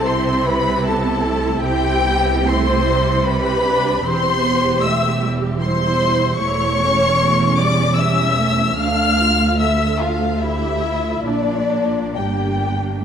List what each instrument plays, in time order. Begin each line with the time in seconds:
Already playing: double bass section C2, cello section C3, viola section C4
0.06 viola section E4, violin section C5 C6
0.45 violin section B4 B5
0.86 viola section B3, violin section A4 A5
1.25 viola section A3
1.62 double bass section C2, cello section C3, viola section C4, violin section G4 G5
2.05 viola section B3
2.46 viola section A3 E4, violin section C5 C6
2.86 viola section G3
3.24 viola section G3 G4, violin section B4 B5
3.65 viola section D4
4.05 double bass section E1, cello section E2, viola section C4 G4, violin section C5 C6
4.44 viola section B3
4.84 viola section A3, violin section E5 E6
5.23 viola section G3
5.61 viola section G3 E4, violin section C5 C6
6.40 double bass section E1, cello section E2, viola section A3 E4, violin section C#5 C#6
6.80 viola section C#4
7.20 viola section A3 C#4
7.58 viola section G3, violin section D5 D6
7.97 viola section G3, violin section E5 E6
8.40 viola section A3
8.77 double bass section D2, cello section D2, viola section A3 D4, violin section F5 F6
9.19 viola section F4
9.59 viola section A4, violin section E5 E6
10.01 violin section F4 F5
10.41 violin section E4 E5, viola section G4
10.83 viola section F4
11.25 double bass section A#1, cello section A#2, viola section A#3 D4, violin section D4 D5
12.16 double bass section G1, cello section G2, viola section D4, violin section G4 G5